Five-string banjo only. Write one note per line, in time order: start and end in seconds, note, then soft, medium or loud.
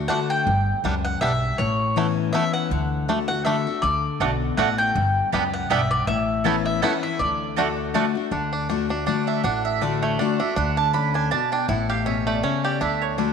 0.10 0.19 A3 medium
0.10 0.12 D4 medium
0.85 0.94 G3 medium
0.85 0.94 B3 medium
0.85 0.94 D4 medium
1.22 1.31 G3 medium
1.22 1.31 B3 medium
1.22 1.31 D4 medium
1.97 2.06 A3 medium
1.97 2.06 B3 medium
1.97 2.06 E4 medium
2.34 2.43 A3 medium
2.34 2.43 B3 medium
2.34 2.44 E4 medium
3.09 3.18 A3 medium
3.09 3.11 D4 medium
3.46 3.55 A3 medium
3.46 3.49 D4 medium
4.21 4.30 A3 medium
4.21 4.24 D4 medium
4.58 4.68 A3 medium
4.58 4.61 D4 medium
5.33 5.42 G3 medium
5.33 5.43 B3 medium
5.33 5.43 D4 medium
5.71 5.80 G3 medium
5.71 5.80 B3 medium
5.71 5.80 D4 medium
6.46 6.55 A3 medium
6.46 6.55 B3 medium
6.46 6.55 E4 medium
6.83 6.92 A3 medium
6.83 6.92 B3 medium
6.83 6.92 E4 medium
7.58 7.67 A3 medium
7.58 7.61 D4 medium
7.95 8.04 A3 medium
7.95 7.97 D4 medium
8.32 8.53 D4 medium
8.53 8.69 D4 medium
8.70 8.90 D4 medium
8.90 9.06 D4 medium
9.07 9.27 D4 medium
9.28 9.43 D4 medium
9.44 9.81 D4 medium
9.82 10.18 D4 medium
10.03 11.43 A3 medium
10.19 10.39 D4 medium
10.40 10.55 D4 medium
10.56 10.76 D4 medium
10.77 10.93 D4 medium
10.94 11.14 D4 medium
11.15 11.30 D4 medium
11.32 11.52 D4 medium
11.53 11.69 D4 medium
11.69 12.23 E4 medium
11.90 12.40 G4 medium
12.06 12.42 C#4 medium
12.27 13.33 A3 medium
12.44 12.80 C#4 medium
12.65 12.81 G4 medium
12.81 13.17 D4 medium
13.18 13.33 D4 medium